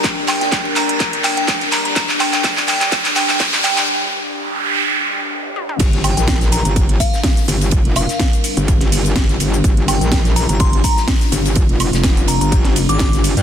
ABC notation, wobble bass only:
X:1
M:4/4
L:1/16
Q:"Swing 16ths" 1/4=125
K:Gm
V:1 name="Wobble bass" clef=bass
z16 | z16 | z16 | G,,,3 B,,,4 G,,,3 z4 G,,,2- |
G,,, F,,,2 z4 G,,,2 G,,,3 G,,,2 G,,,2 | G,,,3 B,,,4 G,,,3 z4 G,,,2- | G,,, F,,,2 F,,,4 G,,,4 _A,,,2 G,,,2 G,, |]